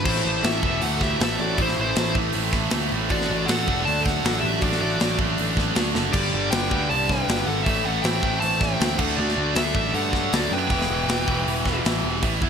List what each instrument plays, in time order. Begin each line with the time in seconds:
0.05 picked electric bass A1, distorted electric guitar A2 E3 A3, analog synth pad A3 E4 C5 E5, lead electric guitar E4 C5, kick, crash
0.16 snare
0.25 picked electric bass A1, distorted electric guitar A2 E3 A3
0.43 picked electric bass A1, distorted electric guitar A2 E3 A3, lead electric guitar A4 E5, snare, open hi-hat
0.63 picked electric bass E1, distorted electric guitar A2 E3 A3, kick
0.81 picked electric bass D2, distorted electric guitar A2 E3 A3, lead electric guitar A4 F#5, open hi-hat
1.00 distorted electric guitar A2 E3 A3, lead electric guitar G4 E5, kick, snare
1.19 picked electric bass A1, distorted electric guitar A2 E3 A3, lead electric guitar A4, snare, open hi-hat
1.24 lead electric guitar E5
1.39 picked electric bass A1, distorted electric guitar A2 E3 A3, lead electric guitar F#4 D5
1.58 picked electric bass A1, distorted electric guitar A2 E3 A3, lead electric guitar E4, kick, open hi-hat
1.62 lead electric guitar C5
1.69 snare
1.77 picked electric bass A1, distorted electric guitar A2 E3 A3, lead electric guitar E4 C5
1.96 picked electric bass A1, distorted electric guitar A2 E3 A3, snare, open hi-hat
2.15 picked electric bass A1, distorted electric guitar A2 E3 A3, kick
2.33 picked electric bass A1, distorted electric guitar A2 E3 A3, open hi-hat
2.53 distorted electric guitar A2 E3 A3, kick, snare
2.70 picked electric bass D2, distorted electric guitar A2 E3 A3, snare, open hi-hat
2.92 picked electric bass A1, distorted electric guitar A2 E3 A3
3.09 picked electric bass A1, distorted electric guitar D3 A3 D4, analog synth pad F#3 D4 A4 D5, lead electric guitar F#4 D5, kick, open hi-hat
3.21 snare
3.29 picked electric bass A1, distorted electric guitar D3 A3 D4
3.46 picked electric bass A1, distorted electric guitar D3, lead electric guitar A4 F#5, snare, open hi-hat
3.50 distorted electric guitar A3 D4
3.68 picked electric bass E1, distorted electric guitar D3 A3 D4, kick
3.84 picked electric bass D2, distorted electric guitar D3, lead electric guitar D5 A5, open hi-hat
3.88 distorted electric guitar A3 D4
4.01 lead electric guitar A4 F#5
4.06 distorted electric guitar D3 A3 D4, kick, snare
4.24 picked electric bass A1, distorted electric guitar D3 A3 D4, snare, open hi-hat
4.39 picked electric bass A1, lead electric guitar G4 E5
4.44 distorted electric guitar D3 A3 D4
4.58 lead electric guitar F#4 D5, open hi-hat
4.62 picked electric bass A1, distorted electric guitar D3 A3 D4, kick
4.72 snare
4.79 picked electric bass A1, distorted electric guitar D3 A3 D4, lead electric guitar F#4 D5
5.00 picked electric bass A1, distorted electric guitar D3 A3 D4, snare, open hi-hat
5.19 picked electric bass A1, distorted electric guitar D3 A3 D4, kick
5.38 picked electric bass A1, distorted electric guitar D3 A3 D4, open hi-hat
5.57 distorted electric guitar D3 A3 D4, kick, snare
5.75 picked electric bass D2, distorted electric guitar D3 A3 D4, snare, open hi-hat
5.94 picked electric bass F#1, distorted electric guitar D3 A3 D4, snare
6.12 picked electric bass G1, distorted electric guitar G2 D3 G3, analog synth pad G3 D4 B4, lead electric guitar G4 D5, kick, crash
6.33 picked electric bass G1, distorted electric guitar G2 D3 G3
6.51 picked electric bass G1, distorted electric guitar G2 D3 G3, lead electric guitar B4 G5, snare, open hi-hat
6.71 picked electric bass D2, distorted electric guitar G2 D3 G3, kick
6.90 picked electric bass C2, distorted electric guitar G2 D3 G3, lead electric guitar D5 A5, open hi-hat
7.07 distorted electric guitar G2 D3 G3, lead electric guitar B4 G5, kick, snare
7.28 picked electric bass G1, distorted electric guitar G2 D3 G3, snare, open hi-hat
7.46 picked electric bass G#1, distorted electric guitar G2 D3 G3, lead electric guitar A4 F#5
7.63 picked electric bass A1, distorted electric guitar A2, analog synth pad E3 C4 A4 E5, lead electric guitar E5, kick
7.67 distorted electric guitar E3 A3, lead electric guitar A4, open hi-hat
7.85 picked electric bass A1, distorted electric guitar A2 E3 A3, lead electric guitar A4 F#5
8.02 picked electric bass A1, distorted electric guitar A2 E3 A3, lead electric guitar C5 G5, snare, open hi-hat
8.23 picked electric bass A1, distorted electric guitar A2 E3 A3, kick
8.40 picked electric bass A1, distorted electric guitar A2 E3 A3, lead electric guitar C5 A5, open hi-hat
8.59 distorted electric guitar A2 E3 A3, lead electric guitar C5 G5, kick, snare
8.78 picked electric bass D2, distorted electric guitar A2 E3 A3, snare, open hi-hat
8.98 picked electric bass D2, distorted electric guitar D3 A3 D4, analog synth pad F#3 D4 A4 D5, lead electric guitar A4 F#5, kick, crash
9.16 picked electric bass D2, distorted electric guitar D3 A3 D4, lead electric guitar F#4 D5
9.29 snare
9.37 picked electric bass D2, distorted electric guitar D3 A3 D4
9.54 picked electric bass D2, distorted electric guitar D3 A3 D4, lead electric guitar A4 E5, snare, open hi-hat
9.74 picked electric bass A1, distorted electric guitar D3 A3 D4, kick
9.93 picked electric bass G2, distorted electric guitar D3 A3 D4, lead electric guitar A4 F#5, open hi-hat
10.12 distorted electric guitar D3 A3 D4, kick, snare
10.31 picked electric bass D2, distorted electric guitar D3 A3 D4, lead electric guitar D5, snare, open hi-hat
10.36 lead electric guitar F#4
10.50 picked electric bass F#2, distorted electric guitar D3 A3 D4, lead electric guitar B4 G5
10.68 picked electric bass E1, distorted electric guitar E2 B2 E3, analog synth pad G3 E4 B4 E5, kick, open hi-hat
10.81 snare
10.88 picked electric bass E1, distorted electric guitar E2 B2 E3
11.07 picked electric bass E1, distorted electric guitar E2 B2 E3, snare, open hi-hat
11.26 picked electric bass E1, distorted electric guitar E2 B2 E3, kick
11.45 picked electric bass E1, distorted electric guitar E2 B2 E3, open hi-hat
11.64 distorted electric guitar E2 B2 E3, kick, snare
11.83 picked electric bass A1, distorted electric guitar E2 B2 E3, snare, open hi-hat
12.02 picked electric bass E1, distorted electric guitar E2 B2 E3
12.22 picked electric bass A1, distorted electric guitar A2 E3 A3, analog synth pad A3 E4 C5 E5, kick, open hi-hat
12.42 picked electric bass E2, distorted electric guitar E3 B3 E4, kick